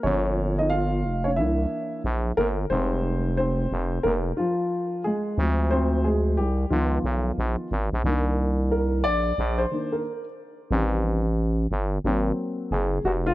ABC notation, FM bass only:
X:1
M:4/4
L:1/16
Q:"Swing 16ths" 1/4=90
K:Cm
V:1 name="FM bass" clef=bass
G,,,6 F,,,2 C,,2 z2 B,,,2 G,,,2 | F,,,6 F,,,2 F,,,2 z6 | D,,6 C,,2 _D,,2 _C,,2 B,,, z A,,, B,,, | C,,6 B,,,2 B,,,2 z6 |
=A,,,6 G,,,2 _A,,,2 z2 _G,,,2 F,,,2 |]